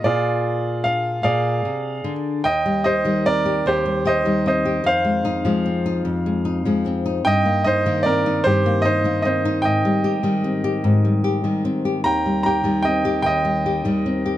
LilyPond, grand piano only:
\new Staff \with { instrumentName = "Grand piano" } { \time 6/8 \key ees \major \tempo 4. = 50 << { d''4 f''8 f''4 r8 | g''8 ees''8 d''8 c''8 ees''8 ees''8 | f''2~ f''8 r8 | g''8 ees''8 d''8 c''8 ees''8 ees''8 |
g''2~ g''8 r8 | bes''8 bes''8 g''8 g''4. | } \\ { <f' aes'>4. <aes' d''>4. | ees''8 c''8 bes'8 g'8 c''8 c''8 | c''2~ c''8 r8 | ees''8 c''8 bes'8 g'8 c''8 c''8 |
ees''2~ ees''8 r8 | g''8 g''8 ees''8 ees''4. | } >> }